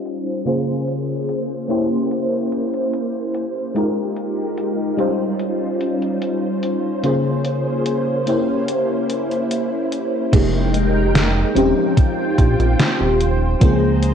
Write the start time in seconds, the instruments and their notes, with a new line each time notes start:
Already playing: fm electric piano G3 C#4 D#4 F4 C5, string machine C#4 F4 G4 C5 D#5
0.05 closed hi-hat
0.45 fm electric piano C#3 A#3 C#4 F4 G#4 C5, string machine C#3 A#3 G#4, closed hi-hat
0.88 closed hi-hat
1.29 closed hi-hat
1.68 fm electric piano A#3 C#4 E4 G4 C5, string machine E4, closed hi-hat
2.11 closed hi-hat
2.52 closed hi-hat
2.74 closed hi-hat
2.93 closed hi-hat
3.34 closed hi-hat
3.74 fm electric piano G#3 D#4 F4 G4 A#4, string machine G#3 D#4 F4 G4 A#4, closed hi-hat
4.16 closed hi-hat
4.58 closed hi-hat
4.97 fm electric piano G3 C#4 D#4 F4 C5, string machine G3 C#4 C5, closed hi-hat
5.40 closed hi-hat
5.81 closed hi-hat
6.02 closed hi-hat
6.22 closed hi-hat
6.63 closed hi-hat
7.03 fm electric piano C#3 A#3 C#4 F4 G#4 C5, string machine C#3 A#3 G#4, closed hi-hat
7.45 closed hi-hat
7.86 closed hi-hat
8.26 fm electric piano A#3 C#4 E4 G4 C5, string machine E4, closed hi-hat
8.68 closed hi-hat
9.10 closed hi-hat
9.31 closed hi-hat
9.51 closed hi-hat
9.92 closed hi-hat
10.32 analog synth bass F1, fm electric piano F3 G#3 A#3 D#4 G4, string machine G#3 D#4 A#4 G5, kick, closed hi-hat, crash
10.74 closed hi-hat
11.15 snare, closed hi-hat
11.54 analog synth bass D#1, fm electric piano F3 C4 C#4 D#4 G4, string machine F4 C5 G5, closed hi-hat
11.97 kick, closed hi-hat
12.38 analog synth bass A#1, kick, closed hi-hat
12.60 analog synth bass A#1, closed hi-hat
12.80 snare, closed hi-hat
13.01 analog synth bass D#1
13.21 closed hi-hat
13.60 analog synth bass C#2, fm electric piano F3 A#3 C4 C#4 G#4, string machine G#4 A#5, kick, closed hi-hat
14.03 closed hi-hat